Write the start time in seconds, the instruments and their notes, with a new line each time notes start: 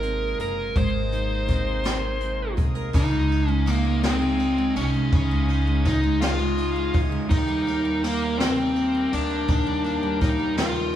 Already playing: upright bass G#1, tonewheel organ C3 G#3 A#3 D#4, steel-string acoustic guitar G#3 D#4 A#4, lead electric guitar A#4
0.03 steel-string acoustic guitar C4, closed hi-hat
0.39 upright bass F#1, steel-string acoustic guitar A#4, lead electric guitar A#4, closed hi-hat
0.76 upright bass G#1, steel-string acoustic guitar G#3, lead electric guitar C5, kick, closed hi-hat
1.12 steel-string acoustic guitar D#4, closed hi-hat
1.48 steel-string acoustic guitar C4, kick, snare, closed hi-hat
1.84 steel-string acoustic guitar A#4, snare, closed hi-hat
2.21 steel-string acoustic guitar C4, closed hi-hat
2.57 upright bass C2, steel-string acoustic guitar G#4, kick, closed hi-hat
2.75 steel-string acoustic guitar A#4
2.93 upright bass C#2, steel-string acoustic guitar C#3, tonewheel organ D#4 F4 G#4 D#5, lead electric guitar D#4, kick, crash
3.11 steel-string acoustic guitar G#3
3.29 steel-string acoustic guitar D#4, ride
3.48 steel-string acoustic guitar G#3, lead electric guitar C#4
3.66 lead electric guitar A#3, steel-string acoustic guitar D#4, ride
3.85 steel-string acoustic guitar G#3
4.03 lead electric guitar C4, snare, ride
4.22 steel-string acoustic guitar G#3
4.39 steel-string acoustic guitar D#4, ride
4.58 steel-string acoustic guitar G#3
4.76 upright bass C2, lead electric guitar C#4, steel-string acoustic guitar D#4, ride
4.94 steel-string acoustic guitar G#3
5.12 upright bass C#2, steel-string acoustic guitar C#3, kick, ride
5.31 steel-string acoustic guitar G#3
5.49 steel-string acoustic guitar D#4, ride
5.67 steel-string acoustic guitar G#3
5.85 steel-string acoustic guitar D#4, lead electric guitar D#4, kick, snare, ride
6.04 steel-string acoustic guitar G#3
6.21 steel-string acoustic guitar C#3, lead electric guitar F4, snare, ride
6.40 steel-string acoustic guitar G#3
6.58 steel-string acoustic guitar D#4, ride
6.76 steel-string acoustic guitar G#3
6.94 upright bass C#2, steel-string acoustic guitar D#4, kick, ride
7.12 steel-string acoustic guitar G#3
7.30 upright bass D#2, steel-string acoustic guitar D#3, tonewheel organ A#3 G4 A#4 G5, lead electric guitar D#4, kick, ride
7.48 steel-string acoustic guitar G3
7.67 steel-string acoustic guitar A#3, ride
7.85 steel-string acoustic guitar G3
8.04 lead electric guitar A#3, steel-string acoustic guitar A#3, ride
8.22 steel-string acoustic guitar G3
8.39 lead electric guitar C4, snare, ride
8.58 steel-string acoustic guitar G3
8.76 steel-string acoustic guitar A#3, ride
8.94 steel-string acoustic guitar G3
9.12 upright bass D2, steel-string acoustic guitar A#3, lead electric guitar D4, ride
9.30 steel-string acoustic guitar G3
9.48 upright bass D#2, steel-string acoustic guitar D#3, kick, ride
9.67 steel-string acoustic guitar G3
9.85 steel-string acoustic guitar A#3, ride
10.03 steel-string acoustic guitar G3
10.21 steel-string acoustic guitar A#3, lead electric guitar D#4, kick, snare, ride
10.39 steel-string acoustic guitar G3
10.57 steel-string acoustic guitar D#3, lead electric guitar F4, snare, ride
10.76 steel-string acoustic guitar G3